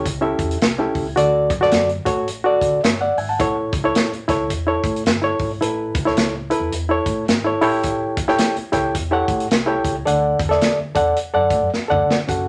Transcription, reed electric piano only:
0.21 C#4 E4 G4 A4 E5
0.78 C#4 E4 G4 A4 E5
1.16 D3 F#4 A4 D5
1.61 F#4 A4 D5
2.05 F#4 A4 C#5
2.44 F#4 A4 D5
2.84 C#5 E5
3.01 D5 F#5
3.18 E5 G#5
3.29 F#5 A5
3.39 A2 E4 A4 C#5
3.84 E4 A4 C#5
4.28 E4 A4 C#5
4.67 E4 A4 C#5
5.22 E4 A4 C#5
5.61 A2 E4 A4 B4
6.05 E4 A4 C#5
6.50 E4 A4 B4
6.89 E4 A4 C#5
7.44 E4 A4 C#5
7.61 A2 E4 G4 A4 C#5 G5
8.28 E4 G4 A4 C#5 G5
8.72 E4 G4 A4 C#5 G5
9.11 E4 G4 A4 C#5 F#5
9.66 E4 G4 A4 C#5 G5
10.05 D3 A4 D5 F#5
10.49 A4 D5 E5
10.95 A4 D5 F#5
11.34 A4 D5 F#5
11.88 A4 D5 F#5
12.28 C#4 F#4 A4 F#5

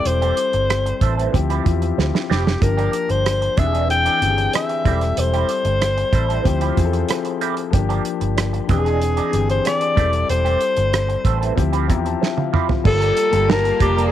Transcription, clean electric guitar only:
0.06 muted clean electric guitar stroke
0.22 E3 A3 C4 G4
0.37 muted clean electric guitar stroke
0.54 muted clean electric guitar stroke
0.70 muted clean electric guitar stroke
0.86 muted clean electric guitar stroke
1.02 E3 A3 C4 A4
1.17 E3 A3 C4 A4
1.34 muted clean electric guitar stroke
1.50 F3 C4 E4 G4
1.65 muted clean electric guitar stroke
1.82 muted clean electric guitar stroke
1.98 muted clean electric guitar stroke
2.14 muted clean electric guitar stroke
2.30 F3 C4 E4 G4
2.46 muted clean electric guitar stroke
2.61 muted clean electric guitar stroke
2.77 F3 A#3 D4 G4
2.93 muted clean electric guitar stroke
3.09 muted clean electric guitar stroke
3.25 muted clean electric guitar stroke
3.42 muted clean electric guitar stroke
3.57 E3 G#3 D4 G#4
3.73 E3 G#3 D4 G#4
3.89 muted clean electric guitar stroke
4.06 E3 G#3 D4 G4
4.22 muted clean electric guitar stroke
4.38 muted clean electric guitar stroke
4.53 muted clean electric guitar stroke
4.70 muted clean electric guitar stroke
4.86 G3 C4 E4 G4
5.02 muted clean electric guitar stroke
5.18 muted clean electric guitar stroke
5.33 G3 C4 E4 G4
5.50 muted clean electric guitar stroke
5.66 muted clean electric guitar stroke
5.81 muted clean electric guitar stroke
5.97 muted clean electric guitar stroke
6.13 G3 C4 E4 A4
6.29 G3 C4 E4 A4
6.45 muted clean electric guitar stroke
6.61 F3 C4 E4 G4
6.77 muted clean electric guitar stroke
6.93 muted clean electric guitar stroke
7.09 muted clean electric guitar stroke
7.25 muted clean electric guitar stroke
7.41 F3 C4 E4 G4
7.57 muted clean electric guitar stroke
7.73 muted clean electric guitar stroke
7.89 F3 A#3 D4 G4
8.05 muted clean electric guitar stroke
8.21 muted clean electric guitar stroke
8.37 muted clean electric guitar stroke
8.53 muted clean electric guitar stroke
8.70 E3 G#3 D4 G#4
8.85 E3 G#3 D4 G#4
9.02 muted clean electric guitar stroke
9.17 E3 G#3 D4 G4
9.33 muted clean electric guitar stroke
9.49 muted clean electric guitar stroke
9.65 muted clean electric guitar stroke
9.81 muted clean electric guitar stroke
9.97 E3 A3 C4 G4
10.13 muted clean electric guitar stroke
10.29 muted clean electric guitar stroke
10.45 E3 A3 C4 G4
10.61 muted clean electric guitar stroke
10.77 muted clean electric guitar stroke
10.93 muted clean electric guitar stroke
11.09 muted clean electric guitar stroke
11.25 E3 A3 C4 A4
11.41 E3 A3 C4 A4
11.57 muted clean electric guitar stroke
11.73 F3 C4 E4 G4
11.89 muted clean electric guitar stroke
12.05 muted clean electric guitar stroke
12.21 muted clean electric guitar stroke
12.37 muted clean electric guitar stroke
12.53 F3 C4 E4 G4
12.69 muted clean electric guitar stroke
12.85 muted clean electric guitar stroke
13.01 F3 A#3 D4 A4
13.18 muted clean electric guitar stroke
13.33 muted clean electric guitar stroke
13.49 muted clean electric guitar stroke
13.65 muted clean electric guitar stroke
13.80 F3 A#3 D4 A#4
13.97 F3 A#3 D4 A#4

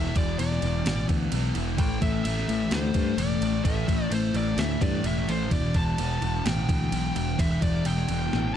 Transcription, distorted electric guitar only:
Already playing: E2 B2 E3
0.15 B2 E3
0.38 E2 B2 E3
0.61 B2 E3
0.85 E2 B2 E3
1.08 B2 E3
1.32 E2 B2 E3
1.55 B2 E3
1.78 A2 E3 A3
2.00 E3 A3
2.25 A2 E3 A3
2.48 E3 A3
2.71 A2 E3 A3
2.94 E3 A3
3.18 A2 E3 A3
3.42 E3 A3
3.64 A2 E3 A3
3.88 E3 A3
4.10 A2 E3 A3
4.34 E3 A3
4.58 A2 E3 A3
4.82 E3 A3
5.05 A2 E3 A3
5.28 E3 A3
5.50 E2 B2 E3
5.75 B2 E3
5.98 E2 B2 E3
6.22 B2 E3
6.45 E2 B2 E3
6.69 B2 E3
6.92 E2 B2 E3
7.16 B2 E3
7.39 E2 B2 E3
7.61 B2 E3
7.85 E2 B2 E3
8.09 B2 E3
8.32 E2 B2 E3

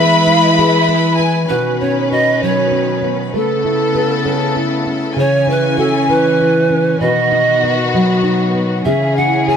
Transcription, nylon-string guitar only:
Already playing: E3 B3 G#4
0.27 E4
0.58 G#4
0.88 B3
1.19 E4
1.50 B2 F#4
1.82 C#4
2.12 F#4
2.42 F#3
2.71 C#4
3.02 B3
3.34 A3 B4
3.65 E4
3.95 B4
4.25 C#4
4.56 E4
4.86 C#4
5.16 C#3 G#4
5.47 E4
5.78 F#4
5.95 G#4
6.09 E3
6.41 E4
6.70 C#4
7.01 B2 B4
7.32 D#4
7.63 B4
7.94 F#3
8.23 D#4
8.54 B3
8.85 C#3 G#4
9.18 E4
9.48 G#4

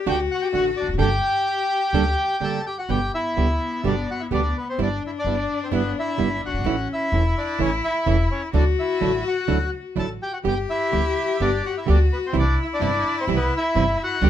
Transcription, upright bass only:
0.06 D2
0.54 A1
0.82 E1
0.89 F1
0.94 F#1
0.99 G1
1.93 D2
2.41 G1
2.89 G1
3.37 D2
3.84 G1
4.31 D2
4.79 G1
5.24 G1
5.71 G1
6.19 G1
6.47 F#1
6.53 G1
6.59 G#1
6.64 A1
7.12 E1
7.59 A1
8.06 E1
8.53 D2
9.01 A1
9.48 D2
9.97 A1
10.45 G1
10.93 D2
11.40 G1
11.88 D2
12.35 C2
12.82 G1
13.27 C2
13.75 G1
14.22 D2

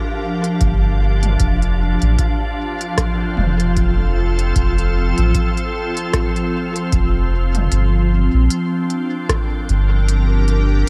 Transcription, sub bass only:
0.61 G1
1.40 F1
2.02 A1
3.37 F1
4.56 F1
5.18 A1
6.93 F1
7.72 G1
8.34 A#1
9.69 G1

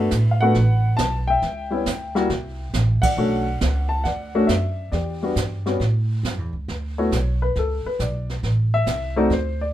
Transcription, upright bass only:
0.12 A2
0.55 A1
0.99 B1
1.42 C#2
1.86 D2
2.30 C2
2.74 A1
3.03 muted upright bass stroke
3.17 B1
3.61 C#2
4.05 D2
4.49 F#2
4.92 E2
5.36 G2
5.80 A2
6.23 F#2
6.38 E2
6.53 C#2
6.68 D2
7.11 B1
7.56 C#2
7.85 muted upright bass stroke
7.99 B1
8.43 A1
8.87 C2
9.30 D2

